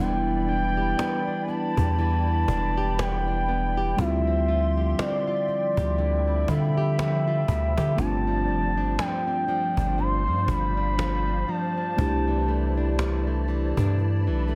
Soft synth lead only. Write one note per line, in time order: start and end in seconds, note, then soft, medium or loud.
0.00 0.48 G5 loud
0.49 1.45 G5 loud
1.43 1.50 G#5 medium
1.49 1.98 A5 loud
1.99 3.00 A5 loud
2.99 4.00 G5 loud
3.99 5.00 E5 loud
4.99 6.50 D5 loud
6.49 8.00 E5 loud
7.99 9.00 A5 loud
8.99 10.00 G5 loud
9.99 10.50 C6 loud
10.49 11.50 B5 loud
11.49 12.99 A5 loud